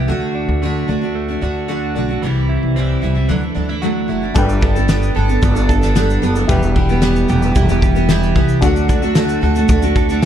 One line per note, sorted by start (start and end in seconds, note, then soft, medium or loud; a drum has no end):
0.00 0.13 E4 medium
0.00 0.13 G4 medium
0.08 0.45 D2 medium
0.08 0.61 D3 medium
0.08 0.62 A3 medium
0.08 0.62 D4 medium
0.08 0.62 F#4 medium
0.35 0.88 D4 medium
0.48 0.85 D2 medium
0.62 0.87 D3 medium
0.62 0.87 A3 medium
0.62 0.88 D4 medium
0.62 0.89 F#4 medium
0.88 1.38 D2 medium
0.88 1.01 D3 medium
0.88 1.02 A3 medium
0.88 1.02 D4 medium
0.88 1.00 F#4 medium
1.01 1.29 A3 soft
1.01 1.28 D4 medium
1.01 1.27 F#4 soft
1.15 2.27 A3 medium
1.28 1.41 A3 soft
1.28 1.41 D4 soft
1.28 1.42 F#4 medium
1.42 1.91 D2 medium
1.42 1.67 D3 medium
1.42 1.68 A3 medium
1.42 1.68 D4 medium
1.42 1.69 F#4 medium
1.68 1.94 D3 medium
1.68 1.95 A3 medium
1.68 1.96 D4 medium
1.68 1.96 F#4 medium
1.95 2.20 B1 medium
1.95 2.09 D3 medium
1.95 2.09 A3 medium
1.95 2.08 D4 medium
1.95 2.07 F#4 medium
2.09 2.23 A3 soft
2.09 2.23 D4 soft
2.09 2.22 F#4 medium
2.22 2.59 C2 medium
2.22 2.75 C3 medium
2.22 2.75 E3 medium
2.22 2.76 G3 medium
2.22 2.76 C4 medium
2.22 2.76 E4 medium
2.49 3.01 E4 medium
2.63 2.99 C2 medium
2.76 3.03 C3 medium
2.76 3.01 E3 medium
2.76 3.02 G3 medium
2.76 3.02 C4 medium
2.76 3.03 E4 medium
3.02 3.27 C2 medium
3.02 3.15 E3 medium
3.02 3.15 G3 medium
3.02 3.14 C4 medium
3.02 3.13 E4 medium
3.15 3.29 G3 soft
3.15 3.29 C4 soft
3.15 3.28 E4 soft
3.28 3.54 D2 medium
3.28 3.42 D3 medium
3.28 4.35 E3 medium
3.28 3.42 F#3 medium
3.28 3.42 A3 medium
3.28 3.42 D4 medium
3.28 3.40 E4 medium
3.41 3.54 A3 soft
3.41 3.54 D4 soft
3.41 3.55 E4 medium
3.55 4.05 D2 medium
3.55 3.68 F#3 medium
3.55 3.69 A3 medium
3.55 3.69 D4 medium
3.55 3.68 E4 medium
3.69 3.82 A3 soft
3.69 3.82 D4 soft
3.69 3.82 E4 soft
3.82 4.09 D3 medium
3.82 4.07 F#3 medium
3.82 4.08 A3 medium
3.82 4.08 D4 medium
3.82 4.09 E4 medium
3.82 4.41 F#4 medium
4.08 4.34 F#1 medium
4.08 4.22 F#3 medium
4.08 4.22 A3 medium
4.08 4.22 D4 medium
4.08 4.20 E4 medium
4.22 4.35 A3 soft
4.22 4.34 D4 soft
4.22 4.35 E4 soft
4.34 5.12 G1 medium
4.34 4.60 G3 medium
4.34 4.61 B3 medium
4.34 6.44 D4 medium
4.34 4.61 D4 loud
4.34 6.45 A4 medium
4.34 4.62 A4 medium
4.34 6.46 B4 medium
4.34 6.46 G5 medium
4.34 kick loud
4.34 shaker medium
4.49 shaker medium
4.61 4.75 G3 medium
4.61 4.76 B3 medium
4.61 4.75 D4 medium
4.61 4.74 A4 medium
4.61 kick loud
4.75 4.87 B3 soft
4.75 4.88 D4 medium
4.75 4.88 A4 medium
4.75 shaker soft
4.88 5.13 G3 medium
4.88 5.14 B3 medium
4.88 5.15 D4 medium
4.88 5.16 A4 medium
4.88 snare loud
4.88 shaker medium
5.03 shaker medium
5.15 5.41 G1 medium
5.15 5.28 G3 medium
5.15 5.29 B3 medium
5.15 5.28 D4 medium
5.15 5.27 A4 medium
5.28 5.41 B3 soft
5.28 5.42 D4 medium
5.28 5.42 A4 medium
5.28 shaker medium
5.42 6.19 G1 loud
5.42 5.55 G3 medium
5.42 5.56 B3 medium
5.42 5.55 D4 medium
5.42 5.54 A4 medium
5.42 kick loud
5.42 shaker medium
5.55 5.82 B3 medium
5.55 5.81 D4 medium
5.55 5.80 A4 medium
5.55 shaker medium
5.69 6.54 A4 medium
5.69 kick medium
5.69 shaker soft
5.81 5.95 B3 soft
5.81 5.95 D4 medium
5.81 5.95 A4 medium
5.81 snare soft
5.81 shaker soft
5.95 6.21 G3 medium
5.95 6.22 B3 medium
5.95 6.22 D4 medium
5.95 6.23 A4 loud
5.95 snare loud
5.95 shaker medium
6.10 shaker medium
6.22 6.47 F#1 medium
6.22 6.35 G3 medium
6.22 6.36 B3 medium
6.22 6.36 D4 medium
6.22 6.35 A4 medium
6.22 shaker soft
6.35 6.48 B3 soft
6.35 6.49 D4 soft
6.35 6.49 A4 medium
6.35 shaker medium
6.47 7.25 E1 loud
6.47 6.76 E2 medium
6.47 6.76 B2 medium
6.47 6.75 E3 medium
6.47 6.75 G3 medium
6.47 6.76 B3 medium
6.47 8.57 E4 medium
6.47 8.58 G4 medium
6.47 6.76 G4 medium
6.47 8.59 B4 medium
6.47 8.59 G5 medium
6.47 kick loud
6.47 shaker medium
6.63 shaker medium
6.76 6.89 E3 medium
6.76 6.89 G3 medium
6.76 6.89 B3 medium
6.76 7.55 E4 medium
6.76 6.88 G4 medium
6.76 kick medium
6.89 7.01 E3 soft
6.89 7.01 G3 medium
6.89 7.02 B3 medium
6.89 7.02 G4 medium
6.89 shaker soft
7.02 7.29 E2 medium
7.02 7.29 B2 medium
7.02 7.27 E3 loud
7.02 7.28 G3 medium
7.02 7.29 B3 medium
7.02 7.29 G4 medium
7.02 snare loud
7.02 shaker medium
7.16 shaker medium
7.28 7.54 E1 loud
7.28 7.42 E3 medium
7.28 7.42 G3 medium
7.28 7.42 B3 medium
7.28 7.41 G4 medium
7.28 shaker medium
7.42 7.54 E3 soft
7.42 7.54 G3 soft
7.42 7.55 B3 medium
7.42 7.56 G4 medium
7.42 shaker soft
7.55 8.32 E1 loud
7.55 7.69 E3 medium
7.55 7.69 G3 medium
7.55 7.68 B3 medium
7.55 8.08 E4 medium
7.55 7.67 G4 medium
7.55 kick loud
7.55 shaker medium
7.68 7.96 E3 soft
7.68 7.95 G3 medium
7.68 7.95 B3 medium
7.68 7.94 G4 medium
7.68 shaker medium
7.82 8.68 G4 medium
7.82 kick medium
7.82 shaker soft
7.95 8.08 E3 medium
7.95 8.09 G3 medium
7.95 8.09 B3 medium
7.95 8.09 G4 medium
7.95 shaker medium
8.09 8.36 E2 medium
8.09 8.36 B2 medium
8.09 8.34 E3 medium
8.09 8.34 G3 medium
8.09 8.35 B3 medium
8.09 8.68 E4 medium
8.09 8.36 G4 loud
8.09 snare loud
8.09 shaker medium
8.23 shaker medium
8.35 8.60 C2 medium
8.35 8.61 E3 medium
8.35 8.62 G3 medium
8.35 8.63 B3 medium
8.35 8.63 G4 medium
8.35 kick medium
8.49 shaker medium
8.61 9.38 D2 loud
8.61 8.87 D3 loud
8.61 10.25 F#3 medium
8.61 8.88 A3 medium
8.61 10.18 D4 medium
8.61 8.88 D4 loud
8.61 10.19 F#4 medium
8.61 8.89 F#4 medium
8.61 10.20 A4 medium
8.61 10.20 F#5 medium
8.61 kick loud
8.61 shaker medium
8.76 shaker medium
8.88 9.02 D3 medium
8.88 9.02 A3 medium
8.88 9.02 D4 medium
8.88 9.01 F#4 medium
8.88 kick medium
8.88 shaker medium
9.02 9.15 A3 medium
9.02 9.14 D4 medium
9.02 9.15 F#4 medium
9.02 shaker soft
9.15 9.40 D3 medium
9.15 9.41 A3 medium
9.15 9.42 D4 medium
9.15 9.43 F#4 loud
9.15 snare loud
9.15 shaker medium
9.29 shaker medium
9.41 9.67 D2 loud
9.41 9.55 D3 medium
9.41 9.56 A3 medium
9.41 9.55 D4 medium
9.41 9.54 F#4 medium
9.41 9.95 A4 medium
9.55 9.68 A3 medium
9.55 9.69 D4 medium
9.55 9.69 F#4 medium
9.55 shaker medium
9.68 10.25 D2 loud
9.68 9.82 D3 medium
9.68 9.83 A3 medium
9.68 9.82 D4 medium
9.68 9.81 F#4 medium
9.68 kick loud
9.68 shaker medium
9.82 10.10 A3 medium
9.82 10.09 D4 medium
9.82 10.08 F#4 medium
9.82 shaker medium
9.96 10.25 A4 medium
9.96 kick medium
9.96 shaker soft
10.09 10.21 A3 medium
10.09 10.22 D4 medium
10.09 10.22 F#4 medium
10.09 shaker soft